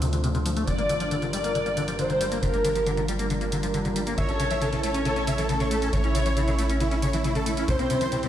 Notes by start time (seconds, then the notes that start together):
Already playing: D2, downlifter
0.02 C3, closed hi-hat
0.13 D3, closed hi-hat
0.24 C3, closed hi-hat
0.35 C3, closed hi-hat
0.46 F3, closed hi-hat
0.57 A3, closed hi-hat
0.67 G1 D3 D5, closed hi-hat
0.78 A#3, closed hi-hat
0.89 D3, closed hi-hat
1.00 F3, closed hi-hat
1.11 D3, closed hi-hat
1.22 D3, closed hi-hat
1.33 G3 D5, closed hi-hat
1.44 A#3, closed hi-hat
1.55 D3, closed hi-hat
1.66 A#3, closed hi-hat
1.77 D3, closed hi-hat
1.88 F3, closed hi-hat
1.99 D3 C5, closed hi-hat
2.10 D3, closed hi-hat
2.21 G3, closed hi-hat
2.32 A#3, closed hi-hat
2.43 G1 D3 A#4, closed hi-hat
2.54 A#3, closed hi-hat
2.65 D3, closed hi-hat
2.75 F3, closed hi-hat
2.86 D3, closed hi-hat
2.97 D3, closed hi-hat
3.08 G3, closed hi-hat
3.19 A#3, closed hi-hat
3.30 D3, closed hi-hat
3.41 A#3, closed hi-hat
3.52 D3, closed hi-hat
3.63 F3, closed hi-hat
3.74 D3, closed hi-hat
3.85 D3, closed hi-hat
3.96 G3, closed hi-hat
4.07 A#3, closed hi-hat
4.18 A1 C#3 C#5 E5, closed hi-hat
4.29 C#4 A4, closed hi-hat
4.40 C#3 A4, closed hi-hat
4.51 E3 E5, closed hi-hat
4.62 C#3 A4, closed hi-hat
4.73 C#3 A4, closed hi-hat
4.83 A3 A4 C#5, closed hi-hat
4.94 C#4, closed hi-hat
5.05 C#3 A4, closed hi-hat
5.16 C#4 A4, closed hi-hat
5.27 C#3 E5, closed hi-hat
5.38 E3 A4, closed hi-hat
5.49 C#3 A4, closed hi-hat
5.60 C#3 C#5, closed hi-hat
5.71 A3 A4, closed hi-hat
5.82 C#4 A4, closed hi-hat
5.93 A1 C#3 C#5, closed hi-hat
6.04 C#4 E4, closed hi-hat
6.15 C#3 E4, closed hi-hat
6.26 E3 C#5, closed hi-hat
6.37 C#3 E4, closed hi-hat
6.48 C#3 E4, closed hi-hat
6.58 A3 E4, closed hi-hat
6.70 C#4, closed hi-hat
6.80 C#3 E4, closed hi-hat
6.91 C#4 E4, closed hi-hat
7.02 C#3 C#5, closed hi-hat
7.13 E3 E4, closed hi-hat
7.24 C#3 E4, closed hi-hat
7.35 C#3 A4, closed hi-hat
7.46 A3 E4, closed hi-hat
7.57 C#4 E4, closed hi-hat
7.68 C2 C3 C5, closed hi-hat
7.79 A#3 C4, closed hi-hat
7.90 C3 C4, closed hi-hat
8.01 E3 C5, closed hi-hat
8.12 C3 C4, closed hi-hat
8.23 C3 C4, closed hi-hat